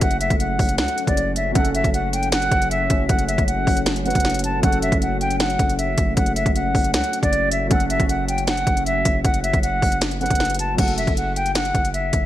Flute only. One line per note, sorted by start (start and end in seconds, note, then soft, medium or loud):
0.02 0.17 F#5 loud
0.20 0.36 E5 medium
0.40 0.76 F#5 medium
0.79 1.06 F#5 medium
1.07 1.34 D5 medium
1.36 1.52 E5 medium
1.54 1.70 F#5 medium
1.75 1.90 E5 medium
1.94 2.09 F#5 medium
2.13 2.29 G5 medium
2.33 2.69 F#5 loud
2.71 3.07 E5 medium
3.09 3.24 F#5 medium
3.28 3.44 E5 medium
3.47 3.79 F#5 medium
4.05 4.41 F#5 medium
4.45 4.60 A5 medium
4.63 4.79 F#5 loud
4.82 4.98 E5 medium
5.02 5.17 F#5 medium
5.21 5.36 G5 medium
5.40 5.76 F#5 medium
5.78 6.14 E5 medium
6.17 6.33 F#5 medium
6.36 6.52 E5 medium
6.55 6.91 F#5 medium
6.94 7.21 F#5 medium
7.23 7.50 D5 medium
7.52 7.67 E5 medium
7.70 7.86 F#5 loud
7.90 8.06 E5 medium
8.09 8.25 F#5 medium
8.28 8.44 G5 medium
8.48 8.84 F#5 loud
8.86 9.22 E5 medium
9.24 9.40 F#5 medium
9.43 9.59 E5 medium
9.63 9.98 F#5 medium
10.20 10.57 F#5 medium
10.60 10.75 A5 medium
10.78 10.94 F#5 loud
10.98 11.13 E5 medium
11.17 11.33 F#5 medium
11.36 11.52 G5 medium
11.56 11.92 F#5 medium
11.94 12.26 E5 medium